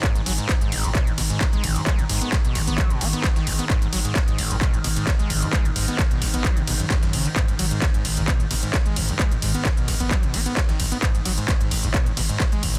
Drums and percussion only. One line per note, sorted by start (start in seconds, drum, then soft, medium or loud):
0.03 kick loud
0.03 clap loud
0.03 closed hi-hat medium
0.15 closed hi-hat soft
0.15 closed hi-hat medium
0.26 snare soft
0.26 closed hi-hat medium
0.26 open hi-hat loud
0.26 ride medium
0.38 closed hi-hat medium
0.49 kick loud
0.49 snare loud
0.49 clap loud
0.49 closed hi-hat medium
0.61 closed hi-hat medium
0.72 open hi-hat medium
0.72 ride medium
0.84 closed hi-hat medium
0.95 kick loud
0.95 clap loud
0.95 closed hi-hat medium
1.07 closed hi-hat medium
1.18 snare soft
1.18 closed hi-hat medium
1.18 open hi-hat loud
1.18 ride medium
1.30 closed hi-hat medium
1.41 kick loud
1.41 snare loud
1.41 clap loud
1.41 closed hi-hat medium
1.53 closed hi-hat medium
1.64 closed hi-hat medium
1.64 open hi-hat loud
1.64 ride medium
1.76 closed hi-hat medium
1.87 kick loud
1.87 clap loud
1.87 closed hi-hat medium
1.99 closed hi-hat medium
2.09 snare soft
2.09 closed hi-hat medium
2.09 open hi-hat loud
2.09 ride medium
2.22 closed hi-hat medium
2.32 kick loud
2.32 snare loud
2.32 clap loud
2.32 closed hi-hat medium
2.45 closed hi-hat medium
2.55 snare medium
2.55 closed hi-hat medium
2.55 open hi-hat medium
2.55 ride medium
2.67 closed hi-hat medium
2.78 kick loud
2.78 clap loud
2.78 closed hi-hat medium
2.90 closed hi-hat medium
3.01 snare soft
3.01 closed hi-hat medium
3.01 open hi-hat loud
3.01 ride medium
3.13 closed hi-hat medium
3.24 kick loud
3.24 snare loud
3.24 clap loud
3.24 closed hi-hat medium
3.36 snare medium
3.36 closed hi-hat medium
3.47 closed hi-hat medium
3.47 open hi-hat loud
3.47 ride medium
3.59 closed hi-hat medium
3.70 kick loud
3.70 clap loud
3.70 closed hi-hat medium
3.82 closed hi-hat medium
3.82 closed hi-hat soft
3.93 snare soft
3.93 closed hi-hat medium
3.93 open hi-hat loud
3.93 ride medium
4.05 closed hi-hat medium
4.15 kick loud
4.15 snare loud
4.15 clap loud
4.15 closed hi-hat medium
4.28 closed hi-hat medium
4.38 open hi-hat loud
4.38 open hi-hat medium
4.38 ride medium
4.51 closed hi-hat medium
4.61 kick loud
4.61 clap loud
4.61 closed hi-hat medium
4.74 closed hi-hat medium
4.84 snare soft
4.84 closed hi-hat medium
4.84 open hi-hat loud
4.84 ride medium
4.97 closed hi-hat medium
5.07 kick loud
5.07 snare loud
5.07 clap loud
5.07 closed hi-hat medium
5.19 closed hi-hat medium
5.30 closed hi-hat medium
5.30 open hi-hat loud
5.30 ride medium
5.42 closed hi-hat medium
5.53 kick loud
5.53 clap loud
5.53 closed hi-hat medium
5.65 closed hi-hat medium
5.76 snare soft
5.76 closed hi-hat medium
5.76 open hi-hat loud
5.76 ride medium
5.88 closed hi-hat medium
5.99 kick loud
5.99 snare loud
5.99 clap loud
5.99 closed hi-hat medium
6.11 closed hi-hat medium
6.22 snare medium
6.22 closed hi-hat medium
6.22 open hi-hat medium
6.22 ride medium
6.34 closed hi-hat medium
6.45 kick loud
6.45 clap loud
6.45 closed hi-hat medium
6.57 closed hi-hat medium
6.67 snare soft
6.67 closed hi-hat medium
6.67 open hi-hat loud
6.67 ride medium
6.80 closed hi-hat medium
6.90 kick loud
6.90 snare loud
6.90 clap loud
6.90 closed hi-hat medium
7.03 snare medium
7.03 closed hi-hat medium
7.13 closed hi-hat medium
7.13 open hi-hat loud
7.13 ride medium
7.25 closed hi-hat medium
7.36 kick loud
7.36 clap loud
7.36 closed hi-hat medium
7.48 closed hi-hat medium
7.48 closed hi-hat soft
7.59 snare soft
7.59 closed hi-hat medium
7.59 open hi-hat loud
7.59 ride medium
7.71 closed hi-hat medium
7.82 kick loud
7.82 snare loud
7.82 clap loud
7.82 closed hi-hat medium
7.94 closed hi-hat medium
8.05 open hi-hat medium
8.05 ride medium
8.17 closed hi-hat medium
8.28 kick loud
8.28 clap loud
8.28 closed hi-hat medium
8.40 closed hi-hat soft
8.51 snare soft
8.51 closed hi-hat medium
8.51 open hi-hat loud
8.51 ride medium
8.63 closed hi-hat medium
8.74 kick loud
8.74 snare loud
8.74 clap loud
8.74 closed hi-hat medium
8.86 closed hi-hat soft
8.96 closed hi-hat medium
8.96 open hi-hat medium
8.96 ride medium
9.09 closed hi-hat soft
9.19 kick loud
9.19 clap loud
9.19 closed hi-hat medium
9.31 closed hi-hat medium
9.42 snare soft
9.42 closed hi-hat medium
9.42 open hi-hat loud
9.42 ride medium
9.54 closed hi-hat medium
9.65 kick loud
9.65 snare loud
9.65 clap loud
9.65 closed hi-hat medium
9.77 closed hi-hat soft
9.88 snare medium
9.88 closed hi-hat medium
9.88 open hi-hat medium
9.88 ride medium
10.00 closed hi-hat medium
10.11 kick loud
10.11 clap loud
10.11 closed hi-hat medium
10.23 closed hi-hat medium
10.34 snare medium
10.34 closed hi-hat medium
10.34 open hi-hat loud
10.34 ride medium
10.46 closed hi-hat soft
10.57 kick loud
10.57 snare loud
10.57 clap loud
10.57 closed hi-hat medium
10.69 snare medium
10.69 closed hi-hat soft
10.80 closed hi-hat medium
10.80 open hi-hat medium
10.80 ride medium
10.92 closed hi-hat soft
11.02 kick loud
11.02 clap loud
11.02 closed hi-hat medium
11.15 closed hi-hat soft
11.15 closed hi-hat medium
11.25 snare soft
11.25 closed hi-hat medium
11.25 open hi-hat loud
11.25 ride medium
11.38 closed hi-hat medium
11.48 kick loud
11.48 snare loud
11.48 clap loud
11.48 closed hi-hat medium
11.61 closed hi-hat medium
11.71 open hi-hat medium
11.71 ride medium
11.84 closed hi-hat medium
11.94 kick loud
11.94 clap loud
11.94 closed hi-hat medium
12.06 closed hi-hat medium
12.17 snare soft
12.17 closed hi-hat medium
12.17 open hi-hat loud
12.17 ride medium
12.29 closed hi-hat soft
12.40 kick loud
12.40 snare loud
12.40 clap loud
12.40 closed hi-hat medium
12.52 closed hi-hat medium
12.63 open hi-hat medium
12.63 ride medium
12.75 closed hi-hat medium